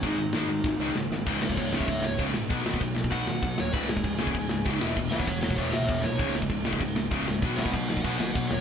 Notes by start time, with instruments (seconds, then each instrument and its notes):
0.03 picked electric bass G#1, distorted electric guitar G#2 D#3 G#3, overdriven electric guitar D#4, kick, ride
0.07 overdriven electric guitar D#5
0.17 picked electric bass G#1, distorted electric guitar G#2
0.21 distorted electric guitar D#3
0.33 picked electric bass G#1, distorted electric guitar G#2 D#3 G#3, snare, ride
0.48 picked electric bass G#1, distorted electric guitar G#2 D#3
0.64 picked electric bass G#1, distorted electric guitar G#2 D#3, kick, snare
0.79 picked electric bass C#2, distorted electric guitar G#2 D#3 G#3
0.94 picked electric bass C#2, distorted electric guitar G#2 D#3, snare
1.09 picked electric bass G#1, distorted electric guitar G#2 D#3, snare
1.26 picked electric bass C#1, distorted electric guitar C#2 G#2 C#3, kick, crash
1.41 picked electric bass C#1, distorted electric guitar C#2 G#2, overdriven electric guitar F4 C#5, snare
1.50 kick
1.56 picked electric bass C#1, distorted electric guitar C#2 G#2, overdriven electric guitar F4 C#5, kick, crash
1.72 picked electric bass C#1, distorted electric guitar C#2 G#2 C#3, overdriven electric guitar C#5 E5, snare
1.81 kick
1.87 picked electric bass C#1, distorted electric guitar C#2 G#2, overdriven electric guitar C#5 E5, kick, crash
2.02 distorted electric guitar C#2 G#2, overdriven electric guitar C#5, snare
2.17 picked electric bass C#1, distorted electric guitar C#2 G#2 C#3, kick, crash
2.34 picked electric bass A#1, distorted electric guitar C#2 G#2, snare
2.48 picked electric bass B1, distorted electric guitar B2 F#3 B3, kick, crash
2.62 picked electric bass G#1, distorted electric guitar B2 F#3 B3, snare
2.74 kick
2.80 picked electric bass B1, distorted electric guitar B2 F#3, kick, crash
2.94 distorted electric guitar B2 F#3, snare
3.04 kick
3.10 picked electric bass B1, distorted electric guitar B2 F#3 B3, overdriven electric guitar F#5, kick, crash
3.26 picked electric bass G#1, distorted electric guitar B2 F#3, snare
3.41 picked electric bass B1, distorted electric guitar B2 F#3, kick, crash
3.57 picked electric bass D#1, distorted electric guitar B2 F#3, overdriven electric guitar C#5, snare
3.72 picked electric bass C#1, distorted electric guitar C#2 G#2 C#3, overdriven electric guitar B4, kick, crash
3.88 picked electric bass C#1, distorted electric guitar C#2 G#2, overdriven electric guitar G#4, snare
3.97 kick
4.03 picked electric bass C#1, distorted electric guitar C#2 G#2, kick, crash
4.18 picked electric bass C#1, distorted electric guitar C#2 G#2 C#3, snare
4.27 kick
4.34 picked electric bass C#1, distorted electric guitar C#2 G#2, kick, crash
4.49 distorted electric guitar C#2 G#2, snare
4.64 picked electric bass C#1, distorted electric guitar C#2 G#2 C#3, kick, crash
4.81 picked electric bass E1, distorted electric guitar E2 B2 E3, snare
4.96 picked electric bass E1, distorted electric guitar E2 B2, kick, crash
5.11 picked electric bass C#1, distorted electric guitar E2 B2 E3, overdriven electric guitar C#5 F#5, snare
5.20 kick
5.27 picked electric bass E1, distorted electric guitar E2 B2, overdriven electric guitar C#5 F#5, kick, crash
5.42 distorted electric guitar E2 B2, overdriven electric guitar C#5 F#5, snare
5.50 kick
5.56 picked electric bass E1, distorted electric guitar E2 B2 E3, overdriven electric guitar C#5 E5, kick, crash
5.72 picked electric bass C#1, distorted electric guitar E2 B2, overdriven electric guitar C#5 E5, snare
5.84 overdriven electric guitar C#5 E5, crash
5.88 picked electric bass E1, distorted electric guitar E2 B2, kick
6.02 picked electric bass B1, distorted electric guitar E2 B2, overdriven electric guitar C#5, snare
6.19 picked electric bass C#1, distorted electric guitar C#2 G#2 C#3, kick, crash
6.34 picked electric bass C#1, distorted electric guitar C#2 G#2, snare
6.42 kick
6.50 picked electric bass C#1, distorted electric guitar C#2 G#2, kick, crash
6.64 picked electric bass C#1, distorted electric guitar C#2 G#2 C#3, snare
6.73 kick
6.79 picked electric bass C#1, distorted electric guitar C#2 G#2, kick, crash
6.95 distorted electric guitar C#2 G#2, snare
7.11 picked electric bass C#1, distorted electric guitar C#2 G#2 C#3, kick, crash
7.26 picked electric bass C#1, distorted electric guitar C#2 G#2, snare
7.42 picked electric bass B1, distorted electric guitar B2 F#3 B3, kick, crash
7.57 picked electric bass G#1, distorted electric guitar B2 F#3 B3, overdriven electric guitar D#5 F#5, snare
7.66 kick
7.72 picked electric bass B1, distorted electric guitar B2 F#3, overdriven electric guitar D#5 F#5, kick, crash
7.89 distorted electric guitar B2 F#3, overdriven electric guitar D#5 F#5, snare
7.97 kick
8.02 picked electric bass B1, distorted electric guitar B2 F#3 B3, overdriven electric guitar D#5 F#5, kick, crash
8.18 picked electric bass G#1, distorted electric guitar B2 F#3, overdriven electric guitar D#5 F#5, snare
8.34 picked electric bass B1, distorted electric guitar B2 F#3, overdriven electric guitar D#5 F#5, kick, crash
8.47 picked electric bass D#1, overdriven electric guitar C#5, snare
8.52 distorted electric guitar B2 F#3